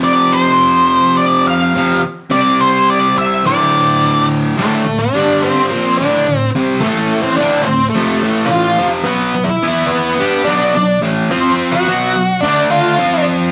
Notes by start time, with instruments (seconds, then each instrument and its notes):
Already playing: distorted electric guitar F2 C3 F3
0.04 lead electric guitar D5
0.33 lead electric guitar C5
1.17 lead electric guitar D5
1.48 lead electric guitar F5
1.74 distorted electric guitar F2 C3 F3
2.30 distorted electric guitar C3 G3 C4, lead electric guitar D5
2.61 lead electric guitar C5
2.90 lead electric guitar D5
3.18 lead electric guitar E5
3.45 distorted electric guitar D2 A2 D3, lead electric guitar D5
4.57 distorted electric guitar D2 A2 D3, lead electric guitar A3
4.86 distorted electric guitar D2 A2
4.99 lead electric guitar D4
5.14 distorted electric guitar G2 D3 G3
5.41 lead electric guitar C4
5.70 distorted electric guitar A#2 F3 A#3
5.97 distorted electric guitar D2 A2 D3, lead electric guitar D4
6.28 distorted electric guitar D2 A2
6.38 lead electric guitar C4
6.55 distorted electric guitar C3 G3 C4
6.81 distorted electric guitar A2 E3 A3, lead electric guitar A3
7.23 lead electric guitar C4
7.36 distorted electric guitar D2 A2, lead electric guitar D4
7.40 distorted electric guitar D3
7.62 lead electric guitar C4
7.67 distorted electric guitar D2 A2
7.90 lead electric guitar A3
7.95 distorted electric guitar F2 C3 F3
8.23 distorted electric guitar A2 E3 A3
8.46 lead electric guitar F4
8.78 distorted electric guitar F2 C3 F3
9.04 distorted electric guitar B2 F#3 B3, lead electric guitar B3
9.34 distorted electric guitar B2 F#3
9.44 lead electric guitar E4
9.62 distorted electric guitar E3 B3 E4
9.86 lead electric guitar B3
10.19 distorted electric guitar G3 D4 G4
10.45 distorted electric guitar B2 F#3 B3, lead electric guitar D4
10.75 distorted electric guitar B2 F#3
11.02 distorted electric guitar A2 E3 A3
11.30 distorted electric guitar F3 C4 F4, lead electric guitar C4
11.72 lead electric guitar F#4
11.88 distorted electric guitar B2 F#3 B3
12.16 distorted electric guitar B2 F#3
12.41 distorted electric guitar D3 A3 D4, lead electric guitar D4
12.70 lead electric guitar F4
12.99 distorted electric guitar F3 C4 F4